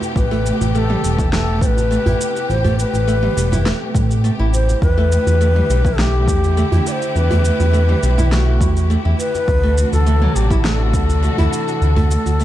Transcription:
Already playing: C3 A3 B3 E4 G4
0.02 djembe slap, djembe tone, shaker
0.16 A1 B4, kick, djembe tone, shaker
0.31 A3, djembe tone
0.46 shaker
0.60 A1, djembe tone, shaker
0.74 A3 B4, shaker
0.78 A4
0.90 G3, mid tom
1.04 E1 G3, shaker
1.18 E4, kick, mid tom, djembe slap, shaker
1.32 A3 A4, snare, shaker
1.61 A1 C5, kick, shaker
1.66 B4
1.77 djembe tone, shaker
1.91 A3, shaker
2.06 A1 E4, djembe bass
2.21 shaker
2.36 shaker
2.49 A1 C5, djembe tone, shaker
2.64 A3, djembe tone, djembe bass
2.78 B4, djembe slap, shaker
2.93 A1, djembe tone, shaker
3.08 A3, shaker
3.23 G3, mid tom
3.37 E1 G3, shaker
3.52 E4, mid tom, djembe slap, djembe bass, shaker
3.66 A3, snare, shaker
3.95 A2, kick, mid tom, djembe slap, shaker
4.11 shaker
4.24 A3, shaker
4.39 A1 E4, djembe slap
4.53 C5, djembe tone, shaker
4.69 djembe slap, djembe tone, shaker
4.82 E2 D3 E4 G4 B4, kick, djembe tone, shaker
4.98 A3, djembe tone
5.12 shaker
5.27 E2, djembe tone, shaker
5.41 A3, shaker
5.56 G3, mid tom
5.69 B1 G3, shaker
5.85 E4, kick, mid tom, djembe slap, shaker
5.99 A3 G4, snare, shaker
6.28 E2, kick, shaker
6.44 djembe tone, shaker
6.57 A3, shaker
6.72 E2 E4, djembe bass
6.87 D5, shaker
6.92 C5
7.02 shaker
7.15 E2 B4, djembe tone, shaker
7.31 A3, djembe tone, djembe bass
7.45 djembe slap, shaker
7.60 E2, djembe tone, shaker
7.73 A3, shaker
7.89 G3, mid tom
8.03 B1 G3, shaker
8.18 E4, mid tom, djembe slap, djembe bass, shaker
8.32 A3 F#4, snare, shaker
8.61 E2, kick, mid tom, shaker
8.77 shaker
8.90 A3, shaker
9.05 E2 E4, djembe slap
9.19 B4, djembe tone, shaker
9.35 djembe slap, djembe tone, shaker
9.48 D2 C3 E3 D4 F#4, kick, djembe tone, shaker
9.63 A3, djembe tone
9.78 shaker
9.92 D2 A4, djembe tone, shaker
10.06 A3, shaker
10.22 F#3, mid tom
10.35 A1 F#3 G4, shaker
10.51 E4, kick, mid tom, djembe slap, shaker
10.64 A3 A4, snare, shaker
10.93 D2, kick, shaker
11.09 djembe tone, shaker
11.23 A3, shaker
11.38 D2 E4, djembe bass
11.53 shaker
11.68 shaker
11.81 D2, djembe tone, shaker
11.96 A3, djembe tone, djembe bass
12.11 djembe slap, shaker
12.26 D2, djembe tone, shaker
12.40 A3, shaker

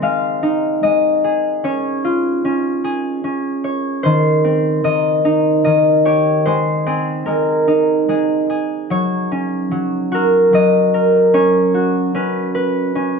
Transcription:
Already playing: A#3 C4 D#4 C5
0.02 G#3 F5
0.43 D#4
0.83 G#3 D#5
1.24 G#4
1.64 C#4 C#5
2.04 F4
2.45 C#4
2.84 G#4
3.24 C#4
3.64 C#5
4.03 D#3 C5
4.44 C4
4.84 D#3 D#5
5.25 D#4
5.64 D#3 D#5
6.05 G4 C#5
6.46 G#3 C5
6.86 C4 G#4
7.26 G#3 A#4
7.68 D#4
8.09 G#3 G#4
8.50 G#4
8.90 F#3 C#5
9.31 C#4
9.71 F#3
10.12 F#4 A#4
10.53 F#3 D#5
10.94 A#4
11.34 C#4 C#5
11.74 F#4
12.15 C#4 B4
12.55 B4
12.95 C#4

